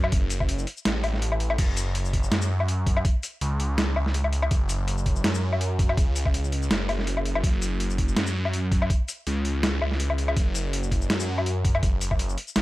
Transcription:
0.00 0.11 F#2 medium
0.00 low woodblock medium
0.12 0.66 F#1 loud
0.12 kick loud
0.12 closed hi-hat medium
0.30 closed hi-hat medium
0.30 shaker medium
0.40 kick medium
0.40 low woodblock soft
0.49 closed hi-hat medium
0.59 shaker soft
0.67 closed hi-hat medium
0.77 shaker soft
0.85 1.57 A1 medium
0.85 snare loud
0.85 closed hi-hat medium
1.04 closed hi-hat soft
1.04 low woodblock medium
1.14 snare soft
1.22 closed hi-hat medium
1.32 low woodblock medium
1.40 closed hi-hat medium
1.50 low woodblock medium
1.58 2.30 F#1 loud
1.58 kick loud
1.58 closed hi-hat medium
1.58 crash medium
1.77 closed hi-hat medium
1.77 shaker medium
1.95 closed hi-hat medium
2.05 shaker soft
2.13 kick medium
2.13 closed hi-hat medium
2.23 shaker soft
2.32 3.04 F#2 medium
2.32 snare loud
2.32 closed hi-hat medium
2.42 shaker medium
2.60 low woodblock medium
2.68 closed hi-hat medium
2.87 kick loud
2.87 closed hi-hat medium
2.97 low woodblock medium
3.05 kick loud
3.05 closed hi-hat medium
3.23 closed hi-hat medium
3.23 shaker medium
3.41 3.95 C#2 loud
3.41 closed hi-hat medium
3.60 closed hi-hat medium
3.78 snare loud
3.78 closed hi-hat medium
3.96 4.50 C#2 loud
3.96 low woodblock medium
4.06 snare soft
4.14 closed hi-hat medium
4.24 low woodblock medium
4.33 closed hi-hat medium
4.42 low woodblock medium
4.51 5.23 F#1 loud
4.51 kick loud
4.51 closed hi-hat medium
4.69 closed hi-hat medium
4.69 shaker medium
4.88 closed hi-hat medium
4.98 shaker soft
5.06 kick medium
5.06 closed hi-hat medium
5.16 shaker soft
5.24 5.96 F#2 loud
5.24 snare loud
5.24 closed hi-hat medium
5.34 shaker medium
5.53 low woodblock medium
5.61 closed hi-hat medium
5.79 kick loud
5.79 closed hi-hat medium
5.89 low woodblock medium
5.97 6.69 C#2 loud
5.97 kick loud
5.97 closed hi-hat medium
6.16 closed hi-hat medium
6.16 shaker medium
6.26 kick medium
6.26 low woodblock soft
6.34 closed hi-hat medium
6.44 shaker soft
6.52 closed hi-hat medium
6.62 shaker soft
6.71 7.43 F#1 medium
6.71 snare loud
6.71 closed hi-hat medium
6.89 closed hi-hat soft
6.89 low woodblock medium
6.99 snare soft
7.07 closed hi-hat medium
7.17 low woodblock medium
7.25 closed hi-hat medium
7.35 low woodblock medium
7.44 8.16 F#1 loud
7.44 kick loud
7.44 closed hi-hat medium
7.62 closed hi-hat medium
7.62 shaker medium
7.80 closed hi-hat medium
7.90 shaker soft
7.98 kick medium
7.98 closed hi-hat medium
8.08 shaker soft
8.17 8.89 F#2 medium
8.17 snare loud
8.17 closed hi-hat medium
8.27 shaker medium
8.45 low woodblock medium
8.53 closed hi-hat medium
8.72 kick loud
8.72 closed hi-hat medium
8.82 low woodblock medium
8.90 kick loud
8.90 closed hi-hat medium
9.08 closed hi-hat medium
9.08 shaker medium
9.27 9.80 C#2 loud
9.27 closed hi-hat medium
9.45 closed hi-hat medium
9.63 snare loud
9.63 closed hi-hat medium
9.82 10.35 C#2 loud
9.82 low woodblock medium
9.91 snare soft
10.00 closed hi-hat medium
10.10 low woodblock medium
10.18 closed hi-hat medium
10.28 low woodblock medium
10.37 11.08 F#1 loud
10.37 kick loud
10.37 closed hi-hat medium
10.55 closed hi-hat medium
10.55 shaker medium
10.73 closed hi-hat medium
10.83 shaker soft
10.91 kick medium
10.91 closed hi-hat medium
11.02 shaker soft
11.10 11.82 F#2 medium
11.10 snare loud
11.10 closed hi-hat medium
11.20 shaker medium
11.38 low woodblock medium
11.46 closed hi-hat medium
11.65 kick loud
11.65 closed hi-hat medium
11.75 low woodblock medium
11.83 12.36 F#1 loud
11.83 kick loud
11.83 closed hi-hat medium
12.01 closed hi-hat medium
12.01 shaker medium
12.11 kick medium
12.11 low woodblock soft
12.19 closed hi-hat medium
12.29 shaker soft
12.38 closed hi-hat medium
12.47 shaker soft
12.56 12.62 A1 medium
12.56 snare loud
12.56 closed hi-hat medium

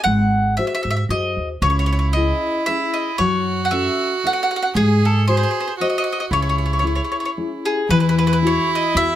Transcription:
0.04 0.57 G#1 medium
0.04 0.56 G#3 medium
0.04 0.56 F#5 loud
0.57 1.00 F#4 medium
0.57 1.01 G#4 soft
0.57 1.01 C5 medium
0.57 0.65 E5 medium
0.67 0.73 E5 medium
0.75 0.82 E5 medium
0.83 1.08 G#2 medium
0.83 0.89 E5 medium
0.90 0.95 E5 medium
0.97 1.04 E5 medium
1.09 1.35 F#2 medium
1.09 1.52 F#4 soft
1.09 1.53 G#4 soft
1.09 1.53 C5 soft
1.09 1.48 D#5 medium
1.37 1.60 D#2 medium
1.62 2.31 C#2 loud
1.62 2.15 C#3 medium
1.62 3.22 E4 medium
1.62 1.69 C#5 medium
1.70 1.78 C#5 medium
1.79 1.85 C#5 medium
1.86 1.91 C#5 medium
1.93 1.98 C#5 medium
1.99 2.07 C#5 medium
2.13 2.58 C#4 soft
2.13 2.58 E4 soft
2.13 2.58 G#4 medium
2.13 2.63 D#5 medium
2.66 3.09 C#4 soft
2.66 3.10 G#4 soft
2.66 2.96 E5 medium
2.94 3.17 D#5 medium
3.18 3.87 F#2 medium
3.18 3.70 F#3 medium
3.18 4.76 F#4 loud
3.18 3.61 C#5 medium
3.65 3.72 F#5 medium
3.71 4.13 C#4 medium
3.71 4.13 F#4 soft
3.71 4.14 A4 medium
3.71 4.25 E5 medium
4.24 4.65 C#4 soft
4.24 4.65 F#4 soft
4.24 4.66 A4 medium
4.24 4.32 F#5 medium
4.33 4.40 F#5 medium
4.43 4.49 F#5 medium
4.51 4.55 F#5 medium
4.56 4.61 F#5 medium
4.63 4.69 F#5 medium
4.74 5.42 G#2 loud
4.74 5.26 G#3 medium
4.74 5.26 G#4 medium
4.74 5.04 G#4 loud
5.05 5.27 A4 medium
5.28 5.69 F#4 medium
5.28 5.75 G#4 medium
5.28 5.69 G#4 soft
5.28 5.35 C5 medium
5.28 5.69 C5 medium
5.37 5.42 C5 medium
5.43 5.50 C5 medium
5.51 5.58 C5 soft
5.60 5.66 C5 medium
5.67 5.73 C5 soft
5.78 6.33 F#4 medium
5.78 6.21 F#4 soft
5.78 6.21 G#4 soft
5.78 6.22 C5 medium
5.78 5.87 D#5 medium
5.90 5.95 D#5 medium
5.98 6.03 D#5 medium
6.04 6.10 D#5 medium
6.13 6.17 D#5 medium
6.20 6.25 D#5 medium
6.31 6.99 C#2 medium
6.31 6.82 C#3 medium
6.31 7.64 E4 medium
6.31 6.39 C#5 medium
6.42 6.48 C#5 medium
6.49 6.55 C#5 medium
6.58 6.63 C#5 soft
6.66 6.70 C#5 soft
6.73 6.77 C#5 soft
6.79 7.25 C#4 soft
6.79 6.84 C#5 medium
6.83 7.25 E4 soft
6.83 7.26 G#4 medium
6.83 6.92 C#5 soft
6.95 7.00 C#5 medium
7.04 7.09 C#5 soft
7.12 7.16 C#5 soft
7.20 7.24 C#5 soft
7.25 7.30 C#5 medium
7.37 7.79 C#4 soft
7.37 7.79 E4 soft
7.37 7.79 G#4 soft
7.65 7.88 G#4 medium
7.88 8.57 E2 medium
7.88 8.41 E3 medium
7.88 9.15 E4 loud
7.88 7.97 B4 medium
8.00 8.06 B4 medium
8.09 8.14 B4 medium
8.19 8.23 B4 medium
8.27 8.30 B4 medium
8.33 8.36 B4 medium
8.42 8.83 E4 medium
8.42 8.84 F#4 medium
8.42 8.84 G#4 medium
8.47 8.70 C#5 medium
8.75 8.95 D#5 medium
8.94 9.15 E2 medium
8.94 9.15 E4 medium
8.94 9.15 F#4 soft
8.94 9.15 G#4 medium
8.94 9.15 E5 loud

